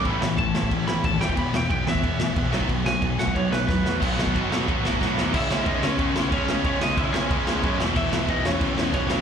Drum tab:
CC |x---x---x---x---|x---x---x---x---|x---x---x-------|x---------------|
RD |----------------|----------------|----------------|----x---x-------|
SD |--o---o---o---o-|--o---o---o---o-|--o---o---o-o-o-|--o---o---o-o-o-|
BD |o---o--oo---o--o|o---o--oo---o--o|o---o--oo---o---|o--oo---o--oo---|

CC |x---x---x---x---|x---x---x---x---|x---x---x---x---|
RD |----------------|----------------|----------------|
SD |--o---o---o---o-|--o---o---o---o-|--o---o---o---o-|
BD |o---o---o---o---|o---o---o---o---|o---o---o---o---|